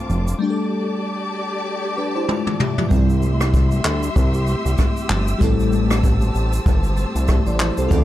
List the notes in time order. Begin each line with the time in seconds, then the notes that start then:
Already playing: C4 D4 F4 A4 A5 D6
0.10 F1, high conga, low conga, shaker
0.28 shaker
0.39 G3 A3 D4 G4 D5 A5 D6
0.44 G4
0.50 A4
1.97 D4 B4
2.16 E4 C5
2.29 F4 D5, high tom
2.47 mid tom
2.60 G4 E5, mid tom
2.78 F4 D5, floor tom
2.89 C2 G3 C4 G4 E5 C6 E6, kick, low conga, shaker
2.94 E4
3.10 shaker
3.22 high conga, shaker
3.41 cross-stick, shaker
3.54 kick, shaker
3.71 high conga, shaker
3.85 D2, cross-stick, clap, shaker
4.03 shaker
4.16 C2, kick, shaker
4.34 shaker
4.47 high conga, shaker
4.65 C2, shaker
4.78 kick, cross-stick, high conga, shaker
4.97 shaker
5.10 G1, clap, high conga, low conga, shaker
5.28 shaker
5.39 A1 G3 A3 C4 E4 C5 A5, kick, hi-hat pedal, low conga, shaker
5.44 A4
5.60 shaker
5.72 high conga, shaker
5.91 cross-stick, shaker
6.04 kick, shaker
6.21 high conga, shaker
6.35 A1, shaker
6.53 shaker
6.66 G1, kick, shaker
6.84 shaker
6.97 high conga, shaker
7.15 C2, shaker
7.28 G4 E5, kick, cross-stick, high conga, shaker
7.47 A1 D5, shaker
7.60 E4 C5, cross-stick, clap, high conga, low conga, shaker
7.77 C2 C4 A4, shaker
7.88 D2 A3 C4 D4 F4 A5 D6, kick, hi-hat pedal, low conga, shaker
7.93 A4